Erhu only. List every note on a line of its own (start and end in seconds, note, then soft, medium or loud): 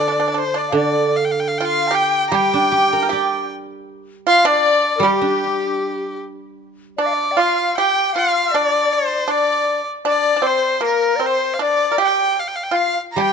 0.00 0.32 D5 medium
0.32 0.40 D5 medium
0.38 0.60 C5 medium
0.58 0.76 D5 medium
0.76 1.18 D5 medium
1.16 1.26 F5 medium
1.25 1.33 G5 medium
1.31 1.41 F5 medium
1.40 1.49 G5 medium
1.48 1.59 F5 medium
1.58 1.67 G5 medium
1.65 1.96 F5 medium
1.95 2.27 G5 medium
2.30 2.37 A#5 medium
2.36 3.50 G5 medium
4.28 4.47 F5 medium
4.45 5.05 D5 medium
5.04 6.18 G4 medium
7.00 7.42 D5 medium
7.40 7.77 F5 medium
7.77 8.12 G5 medium
8.17 8.57 F5 medium
8.56 8.94 D5 medium
8.93 9.33 C5 medium
9.31 9.87 D5 medium
10.08 10.48 D5 medium
10.47 10.84 C5 medium
10.84 11.28 A#4 medium
11.26 11.55 C5 medium
11.54 11.64 F5 medium
11.62 12.00 D5 medium
12.04 12.41 G5 medium
12.40 12.49 F5 medium
12.47 12.57 G5 medium
12.56 12.65 F5 medium
12.63 12.77 G5 medium
12.76 13.01 F5 medium
13.12 13.22 A#5 medium
13.21 13.33 G5 medium